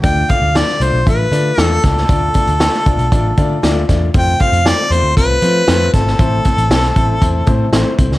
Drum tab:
HH |x-x-x-x-x-x-x-x-|x-xxx-xxx-x-x-x-|x-xxx-x-x-x-x-x-|x-xxx-x-x-x-x-x-|
SD |----oo------o-oo|----oo------o-o-|----o-------o-oo|----oo------o--o|
BD |o-o-----o-----o-|o-o---o-o-o---o-|o-o-----o-----o-|o-o---o-o-o---o-|